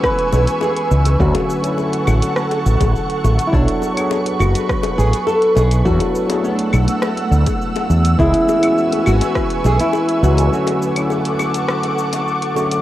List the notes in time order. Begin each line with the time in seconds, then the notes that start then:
Already playing: E3 G#3 B3 C#4 F#4 G#4 B4 G#5 C#6 E6
0.03 B4, kick, cross-stick, cabasa
0.19 closed hi-hat
0.32 B1, high bongo, cabasa
0.47 closed hi-hat, cabasa
0.61 G#4, high bongo, cabasa
0.77 closed hi-hat
0.91 C#2, cabasa
1.05 closed hi-hat, high bongo, cabasa
1.18 D2 D3 F#3 A3 C#4 F#4 A4 F#5 C#6, kick, cabasa
1.35 closed hi-hat, high bongo
1.50 cabasa
1.62 D3 F#3 A3, closed hi-hat, cabasa
1.66 C#4 E4
1.78 high bongo, cabasa
1.93 closed hi-hat
2.07 A1, high bongo, cabasa, claves
2.22 closed hi-hat, cabasa
2.36 cross-stick, cabasa
2.51 closed hi-hat, high bongo
2.66 A1, cabasa
2.80 A1, kick, closed hi-hat, high bongo, cabasa
2.96 cabasa
3.10 closed hi-hat
3.24 A1, high bongo, cabasa
3.39 closed hi-hat, cabasa
3.47 E4
3.52 B1 F#3 B3 D4 A4 B4 C#5, kick, cabasa
3.68 closed hi-hat
3.82 high bongo, cabasa
3.94 F#3 B3 C#5, closed hi-hat, cabasa, claves
3.99 D4 G#4
4.11 high bongo, cabasa
4.26 closed hi-hat
4.39 F#1 F#4, cabasa, claves
4.55 closed hi-hat, high bongo, cabasa
4.69 kick, cross-stick, cabasa
4.83 closed hi-hat, high bongo
4.98 A1 G#4, cabasa
5.13 closed hi-hat, cabasa
5.27 A4, high bongo, cabasa
5.42 closed hi-hat
5.55 B1 G#4, high bongo, cabasa
5.71 closed hi-hat, cabasa
5.84 E2 F#3 A3 B3 D4 E4 F#4 A4 F#5 E6, kick, cabasa
6.00 closed hi-hat, high bongo
6.15 cabasa
6.27 F#3 B3 D4, closed hi-hat, high bongo, cabasa
6.31 E4 G#4
6.44 D4, cabasa
6.59 closed hi-hat
6.73 B1, high bongo, cabasa, claves
6.88 closed hi-hat, cabasa
7.02 cross-stick, high bongo, cabasa
7.17 closed hi-hat
7.31 D2, cabasa
7.46 kick, closed hi-hat, high bongo, cabasa
7.62 cabasa
7.76 closed hi-hat, high bongo
7.90 E2, cabasa
8.05 closed hi-hat, cabasa
8.18 C#2 E3 G#3 B3 C#4 E4 G#4 B4 G#5 C#6, kick, high bongo, cabasa
8.34 closed hi-hat
8.49 high bongo, cabasa
8.60 E3 G#3 B3, closed hi-hat, cabasa, claves
8.65 C#4 F#4
8.78 cabasa
8.92 closed hi-hat, high bongo
9.06 G#1 F#4, cabasa, claves
9.21 closed hi-hat, high bongo, cabasa
9.35 kick, cross-stick, cabasa
9.50 closed hi-hat
9.64 B1 G#4, high bongo, cabasa
9.80 E4, closed hi-hat, cabasa
9.93 high bongo, cabasa
10.09 closed hi-hat
10.23 C#2 F#4, cabasa
10.37 closed hi-hat, high bongo, cabasa
10.51 D3 F#3 A3 C#4 F#4 A4 F#5 C#6 D6, cabasa
10.67 closed hi-hat, high bongo
10.82 cabasa
10.94 D3 F#3 A3, closed hi-hat, cabasa, claves
10.98 C#4 E4
11.10 high bongo, cabasa
11.25 closed hi-hat
11.39 high bongo, cabasa, claves
11.54 closed hi-hat, cabasa
11.68 cross-stick, cabasa
11.83 closed hi-hat, high bongo
11.98 cabasa
12.13 closed hi-hat, high bongo, cabasa
12.28 cabasa
12.42 closed hi-hat
12.55 D3 F#3 A3 C#4 F#4, high bongo, cabasa
12.71 closed hi-hat, cabasa